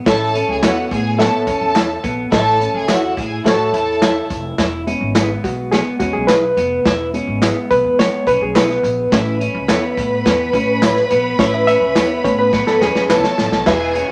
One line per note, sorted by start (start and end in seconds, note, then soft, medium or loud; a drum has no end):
0.06 0.40 A1 loud
0.06 0.29 E4 medium
0.06 0.85 E4 medium
0.06 0.85 A4 medium
0.06 0.47 A4 loud
0.06 0.85 C#5 medium
0.06 0.85 E5 medium
0.06 0.47 A5 loud
0.06 kick loud
0.06 snare loud
0.06 closed hi-hat loud
0.35 0.57 C#4 medium
0.35 closed hi-hat medium
0.35 tambourine soft
0.49 0.60 C#2 medium
0.49 0.61 G#4 medium
0.49 0.61 G#5 loud
0.63 0.85 E2 medium
0.63 1.16 B3 medium
0.63 0.76 E4 medium
0.63 0.86 F#4 medium
0.63 0.76 A4 medium
0.63 0.76 C#5 medium
0.63 0.76 E5 medium
0.63 0.86 F#5 medium
0.63 snare loud
0.63 clap medium
0.63 closed hi-hat medium
0.63 tambourine medium
0.91 1.25 A2 loud
0.91 1.14 G#4 medium
0.91 1.14 G#5 loud
0.91 kick medium
0.91 closed hi-hat medium
0.91 tambourine soft
1.18 1.41 B3 medium
1.18 1.98 E4 medium
1.18 1.98 A4 medium
1.18 1.42 A4 medium
1.18 1.98 C#5 medium
1.18 1.98 E5 medium
1.18 1.42 A5 loud
1.18 snare loud
1.18 closed hi-hat medium
1.18 tambourine medium
1.47 1.59 E2 medium
1.47 1.70 C#4 medium
1.47 2.01 A4 medium
1.47 2.01 A5 loud
1.47 kick medium
1.47 closed hi-hat medium
1.47 tambourine medium
1.61 1.95 E2 medium
1.75 1.89 E4 medium
1.75 1.89 A4 medium
1.75 1.89 C#5 medium
1.75 1.89 E5 medium
1.75 snare loud
1.75 clap medium
1.75 closed hi-hat medium
1.75 tambourine medium
2.04 2.27 A#1 medium
2.04 2.26 B3 medium
2.04 kick medium
2.04 closed hi-hat medium
2.04 tambourine medium
2.32 2.66 A1 loud
2.32 2.54 E4 medium
2.32 3.11 E4 medium
2.32 2.72 A4 loud
2.32 3.11 A4 medium
2.32 3.11 C#5 medium
2.32 2.39 D#5 medium
2.32 2.72 A5 loud
2.32 kick loud
2.32 snare loud
2.32 closed hi-hat medium
2.32 tambourine soft
2.39 3.14 E5 medium
2.60 2.83 C#4 medium
2.60 closed hi-hat medium
2.60 tambourine soft
2.74 2.86 C#2 medium
2.74 2.86 G#4 medium
2.74 2.86 G#5 loud
2.88 3.11 E2 medium
2.88 3.02 E4 medium
2.88 3.42 E4 medium
2.88 3.12 F#4 medium
2.88 3.02 A4 medium
2.88 3.02 C#5 medium
2.88 3.02 E5 medium
2.88 3.12 F#5 medium
2.88 snare loud
2.88 clap medium
2.88 closed hi-hat medium
2.88 tambourine medium
3.17 3.40 A2 loud
3.17 3.40 G#4 medium
3.17 3.40 G#5 loud
3.17 kick medium
3.17 closed hi-hat medium
3.44 3.67 A2 medium
3.44 4.24 E4 medium
3.44 3.67 F#4 medium
3.44 4.24 A4 medium
3.44 3.69 A4 medium
3.44 3.52 C5 medium
3.44 4.24 E5 medium
3.44 3.68 A5 loud
3.44 snare loud
3.44 closed hi-hat medium
3.44 tambourine medium
3.52 4.28 C#5 medium
3.73 4.18 E2 medium
3.73 3.96 E4 medium
3.73 4.27 A4 medium
3.73 4.27 A5 medium
3.73 closed hi-hat medium
3.73 tambourine medium
4.02 4.15 E4 medium
4.02 4.55 E4 medium
4.02 4.15 A4 medium
4.02 4.15 C#5 medium
4.02 4.16 E5 medium
4.02 snare loud
4.02 clap medium
4.02 closed hi-hat medium
4.02 tambourine medium
4.30 4.53 F1 medium
4.30 kick medium
4.30 closed hi-hat medium
4.30 tambourine soft
4.58 4.93 E1 medium
4.58 4.81 E4 medium
4.58 kick medium
4.58 snare loud
4.58 closed hi-hat medium
4.58 tambourine soft
4.87 6.00 G#3 soft
4.87 6.00 B3 soft
4.87 5.09 C#4 medium
4.87 6.00 E4 medium
4.87 closed hi-hat medium
4.87 tambourine soft
5.01 5.35 G#1 medium
5.15 5.69 B3 medium
5.15 5.28 E4 medium
5.15 5.29 G#4 medium
5.15 5.29 B4 medium
5.15 5.29 E5 medium
5.15 snare loud
5.15 clap medium
5.15 closed hi-hat medium
5.15 tambourine medium
5.44 5.78 B1 medium
5.44 5.73 F#4 medium
5.44 kick medium
5.44 closed hi-hat medium
5.44 tambourine soft
5.72 5.95 B3 medium
5.72 5.84 G#4 medium
5.72 snare loud
5.72 closed hi-hat medium
5.72 tambourine soft
5.99 6.11 E2 loud
5.99 6.26 G#3 soft
5.99 6.26 B3 soft
5.99 6.23 C#4 medium
5.99 6.27 E4 medium
5.99 6.15 F#4 medium
5.99 kick medium
5.99 closed hi-hat medium
5.99 tambourine medium
6.13 6.49 B1 medium
6.13 6.29 G#4 medium
6.27 6.42 E4 medium
6.27 6.42 G#4 medium
6.27 7.09 B4 medium
6.27 6.42 B4 medium
6.27 6.42 E5 medium
6.27 snare loud
6.27 clap medium
6.27 closed hi-hat medium
6.27 tambourine medium
6.57 6.80 F1 loud
6.57 6.79 B3 medium
6.57 closed hi-hat medium
6.57 tambourine medium
6.85 7.20 E1 medium
6.85 7.08 E4 medium
6.85 kick loud
6.85 snare loud
6.85 closed hi-hat medium
6.85 tambourine soft
7.13 7.98 G#3 medium
7.13 7.98 B3 medium
7.13 7.36 C#4 medium
7.13 7.98 E4 medium
7.13 closed hi-hat medium
7.13 tambourine soft
7.27 7.50 G#1 medium
7.42 7.96 B3 medium
7.42 7.55 E4 medium
7.42 7.55 G#4 medium
7.42 7.55 B4 medium
7.42 7.56 E5 medium
7.42 snare loud
7.42 clap medium
7.42 closed hi-hat medium
7.42 tambourine medium
7.70 7.82 B1 medium
7.70 8.00 B4 medium
7.70 kick medium
7.70 closed hi-hat medium
7.70 tambourine soft
7.84 8.07 E2 medium
7.99 8.24 G#3 soft
7.99 8.24 B3 soft
7.99 8.21 B3 medium
7.99 8.25 E4 soft
7.99 8.25 C#5 loud
7.99 snare loud
7.99 closed hi-hat medium
7.99 tambourine medium
8.26 8.38 B1 medium
8.26 8.50 C#4 medium
8.26 8.42 B4 medium
8.26 kick medium
8.26 closed hi-hat medium
8.26 tambourine medium
8.41 8.75 B1 medium
8.41 8.55 G#4 medium
8.55 9.09 B3 medium
8.55 8.68 E4 medium
8.55 8.69 G#4 medium
8.55 9.37 B4 medium
8.55 8.69 B4 loud
8.55 8.69 E5 loud
8.55 snare loud
8.55 clap medium
8.55 closed hi-hat loud
8.55 tambourine medium
8.70 snare soft
8.83 9.06 A#1 loud
8.83 closed hi-hat medium
8.83 tambourine soft
9.12 9.46 A1 loud
9.12 9.50 A3 medium
9.12 9.50 C#4 medium
9.12 9.35 E4 medium
9.12 9.50 E4 medium
9.12 13.06 B4 medium
9.12 13.06 B5 loud
9.12 kick loud
9.12 snare loud
9.12 closed hi-hat loud
9.41 9.63 C#4 medium
9.41 closed hi-hat medium
9.41 tambourine medium
9.55 9.66 C#2 medium
9.68 9.92 E2 medium
9.68 10.22 B3 medium
9.68 9.82 E4 medium
9.68 9.82 A4 medium
9.68 9.82 C#5 medium
9.68 9.83 E5 medium
9.68 snare loud
9.68 clap medium
9.68 closed hi-hat medium
9.68 tambourine medium
9.97 10.20 A2 loud
9.97 kick medium
9.97 closed hi-hat medium
10.25 10.48 E2 medium
10.25 10.48 B3 medium
10.25 snare loud
10.25 closed hi-hat medium
10.25 tambourine medium
10.53 10.99 A2 loud
10.53 10.80 A3 soft
10.53 10.76 C#4 medium
10.53 10.80 C#4 soft
10.53 10.80 E4 medium
10.53 kick medium
10.53 closed hi-hat medium
10.53 tambourine medium
10.82 10.95 E4 medium
10.82 10.96 A4 medium
10.82 10.96 C#5 loud
10.82 10.96 E5 medium
10.82 snare loud
10.82 clap medium
10.82 closed hi-hat loud
10.82 tambourine medium
10.96 snare soft
11.11 11.34 A#1 loud
11.11 11.33 B3 medium
11.11 closed hi-hat medium
11.11 tambourine medium
11.38 11.73 A1 medium
11.38 11.77 A3 medium
11.38 11.77 C#4 medium
11.38 11.62 E4 medium
11.38 11.77 E4 medium
11.38 11.54 C#5 loud
11.38 kick loud
11.38 snare loud
11.38 closed hi-hat medium
11.38 tambourine soft
11.54 11.66 E5 loud
11.67 11.90 C#4 medium
11.67 12.20 E5 loud
11.67 closed hi-hat medium
11.67 tambourine medium
11.81 11.93 C#2 medium
11.95 12.19 E2 medium
11.95 12.50 B3 medium
11.95 12.09 E4 medium
11.95 12.09 A4 medium
11.95 12.09 C#5 medium
11.95 12.10 E5 medium
11.95 snare loud
11.95 clap medium
11.95 closed hi-hat medium
11.95 tambourine medium
12.24 12.59 A2 loud
12.24 12.50 A3 soft
12.24 12.50 C#4 soft
12.24 12.50 E4 medium
12.24 12.39 C#5 medium
12.24 kick medium
12.24 closed hi-hat medium
12.24 tambourine soft
12.39 12.65 B4 medium
12.53 12.75 B3 medium
12.53 kick medium
12.53 snare medium
12.53 tambourine medium
12.67 12.80 A4 medium
12.67 snare medium
12.81 12.93 E2 medium
12.81 13.04 C#4 medium
12.81 13.11 G#4 medium
12.81 snare medium
12.81 tambourine medium
12.95 13.07 E2 medium
12.95 snare medium
13.09 13.21 C#2 loud
13.09 13.63 B3 medium
13.09 13.23 E4 medium
13.09 13.66 A4 medium
13.09 13.23 A4 medium
13.09 13.25 B4 medium
13.09 13.23 C#5 medium
13.09 13.23 E5 medium
13.09 13.66 A5 loud
13.09 snare medium
13.09 clap medium
13.09 tambourine medium
13.24 13.51 C#5 medium
13.24 snare medium
13.38 13.50 A1 medium
13.38 snare loud
13.38 tambourine medium
13.52 13.64 B1 medium
13.52 snare medium
13.66 14.01 E1 medium
13.66 14.12 E4 medium
13.66 13.89 E4 medium
13.66 13.74 F#4 medium
13.66 14.07 G#4 loud
13.66 14.12 B4 medium
13.66 14.12 E5 medium
13.66 14.07 G#5 loud
13.66 kick loud
13.66 snare loud
13.66 crash medium
13.74 14.12 G#4 medium
13.95 14.12 C#4 medium
13.95 closed hi-hat medium
13.95 tambourine soft